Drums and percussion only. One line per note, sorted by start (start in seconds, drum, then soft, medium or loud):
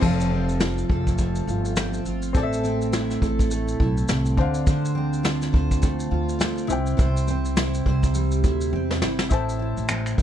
0.02 kick loud
0.02 crash medium
0.20 shaker medium
0.49 shaker soft
0.60 snare loud
0.60 shaker medium
0.78 shaker medium
0.90 kick medium
1.07 kick medium
1.07 shaker soft
1.18 kick medium
1.18 shaker medium
1.35 shaker soft
1.48 shaker soft
1.65 shaker soft
1.76 snare loud
1.76 shaker medium
1.94 shaker soft
2.05 shaker medium
2.22 shaker medium
2.35 kick loud
2.35 shaker medium
2.53 shaker medium
2.64 shaker soft
2.82 shaker soft
2.93 snare medium
2.93 shaker medium
3.10 snare soft
3.10 shaker medium
3.22 kick medium
3.22 shaker soft
3.39 kick medium
3.39 shaker medium
3.51 shaker medium
3.68 shaker soft
3.80 kick loud
3.97 shaker soft
4.08 snare medium
4.08 shaker medium
4.26 shaker soft
4.37 kick medium
4.54 shaker medium
4.67 kick loud
4.67 shaker medium
4.85 shaker medium
5.13 shaker soft
5.24 snare medium
5.24 shaker medium
5.42 snare soft
5.42 shaker medium
5.54 kick medium
5.71 kick medium
5.71 shaker medium
5.82 kick medium
5.82 shaker medium
6.00 shaker soft
6.29 shaker soft
6.40 snare loud
6.40 shaker medium
6.58 shaker soft
6.70 shaker medium
6.86 shaker soft
6.99 kick loud
6.99 shaker medium
7.17 shaker medium
7.28 shaker soft
7.45 shaker soft
7.57 snare loud
7.57 shaker medium
7.74 shaker medium
7.86 kick medium
8.03 kick medium
8.03 shaker medium
8.14 shaker medium
8.31 shaker soft
8.44 kick loud
8.44 shaker soft
8.61 shaker soft
8.91 snare medium
9.02 snare medium
9.19 snare loud
9.30 kick loud
9.30 shaker medium
9.49 shaker medium
9.77 shaker soft
9.89 finger snap loud
9.89 shaker medium
10.06 finger snap soft
10.06 shaker soft
10.18 kick medium
10.18 shaker soft